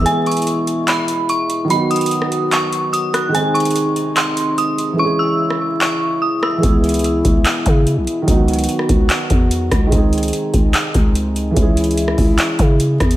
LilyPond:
<<
  \new Staff \with { instrumentName = "Synth bell" } { \time 4/4 \key cis \minor \tempo 4 = 146 gis''8 cis'''4. b''4 cis'''8 r8 | b''8 dis'''4. cis'''4 dis'''8 fis'''8 | gis''8 cis'''4. bis''4 dis'''8 r8 | cis'''8 e'''4. cis'''4 dis'''8 e'''8 |
r1 | r1 | r1 | r1 | }
  \new Staff \with { instrumentName = "Grand piano" } { \time 4/4 \key cis \minor <e gis b e' gis'>1 | <dis fis b dis' fis'>1 | <dis gis bis dis' gis'>1 | <e gis cis' e' gis'>1 |
<e gis b e' gis'>1 | <dis fis b dis' fis'>1 | <dis gis bis dis' gis'>1 | <e gis cis' e' gis'>1 | }
  \new Staff \with { instrumentName = "French horn section" } { \clef bass \time 4/4 \key cis \minor << { <e gis e'>1 | <fis b fis'>1 | <dis gis dis'>1 | <e gis e'>1~ |
<e gis e'>1 | <fis b fis'>1 | <gis dis'>1 | <e gis e'>1 | } \\ { b,1 | dis1 | bis,1 | cis1 |
b,1 | dis1 | bis,1 | cis1 | } >> }
  \new Staff \with { instrumentName = "808-style bass" } { \clef bass \time 4/4 \key cis \minor r1 | r1 | r1 | r1 |
cis,4. cis,8 r8 cis8. b,,16 r8 | cis,4 r8 cis,8 r8 e,4 cis,8 | cis,4 r8 cis,8 r8 cis,4. | cis,4. cis,8 r8 cis4 e,8 | }
  \new DrumStaff \with { instrumentName = "Drums" } \drummode { \time 4/4 hh8 hh32 hh32 hh32 hh32 hh8 hh8 <hc hh>8 hh8 hh8 hh8 | hh8 hh32 hh32 hh32 hh32 hh16 ss16 hh8 <hc hh>8 hh8 hh8 <hh ss>8 | hh8 hh32 hh32 hh32 hh32 hh8 hh8 <hc hh>8 hh8 hh8 hh8 | r4 r16 ss8. hc4 r8 ss8 |
<hh bd>8 hh32 hh32 hh32 hh32 hh8 <hh bd>8 <hc hh>8 <hh bd>8 hh8 hh8 | <hh bd>8 hh32 hh32 hh32 hh32 hh16 ss16 <hh bd>8 <hc hh>8 <hh bd>8 hh8 <hh bd ss>8 | <hh bd>8 hh32 hh32 hh32 hh32 hh8 <hh bd>8 <hc hh>8 <hh bd>8 hh8 hh8 | \tuplet 3/2 { <hh bd>16 r16 r16 hh16 hh16 hh16 } hh16 ss16 <hho bd>8 <hc hh>8 <hh bd>8 hh8 <hh bd ss>16 hh16 | }
>>